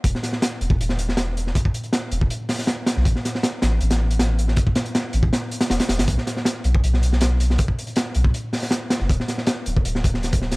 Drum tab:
HH |x-x-x-x-x-x-x-x-|x-xxx-x-x-o-x-x-|x-x-x-x-xx-xx-x-|x-xxx-x-x-xxxxxx|
SD |-oooo----o-oo--o|----o-----ooo-oo|-oooo-o--o--o--o|--o-o---o--ooooo|
BD |o------o--------|oo-----o--------|o---------------|oo-----o--------|

HH |x-x-x-x-x-x-x-x-|x-xxx-x-x-o-x-x-|x-x-x-x-x-x-xx-x|
SD |-oooo----o-oo--o|----o-----ooo-oo|-oooo----o-oo-oo|
BD |o------o--------|oo-----o--------|o------o--o--o--|